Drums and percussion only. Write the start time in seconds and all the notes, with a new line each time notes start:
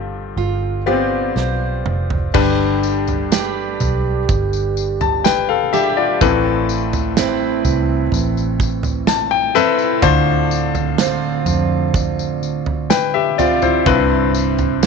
1.37 snare
1.86 mid tom
2.10 floor tom
2.34 kick, floor tom, crash, tambourine
2.83 tambourine
3.07 floor tom, tambourine
3.32 snare, tambourine
3.80 floor tom, tambourine
4.29 kick, floor tom, tambourine
4.53 tambourine
4.77 tambourine
5.01 floor tom, tambourine
5.25 snare, tambourine
5.74 tambourine
6.21 kick, floor tom, tambourine
6.69 tambourine
6.93 floor tom, tambourine
7.17 snare, tambourine
7.65 floor tom, tambourine
8.12 floor tom, tambourine
8.37 tambourine
8.60 kick, tambourine
8.83 floor tom, tambourine
9.07 snare, tambourine
9.56 tambourine
9.79 tambourine
10.02 kick, floor tom, tambourine
10.51 tambourine
10.75 floor tom, tambourine
10.98 snare, tambourine
11.46 floor tom, tambourine
11.94 kick, floor tom, tambourine
12.19 tambourine
12.43 tambourine
12.66 floor tom
12.90 snare, tambourine
13.39 floor tom, tambourine
13.62 floor tom, tambourine
13.86 kick, floor tom, tambourine
14.34 tambourine
14.58 floor tom, tambourine
14.83 snare, tambourine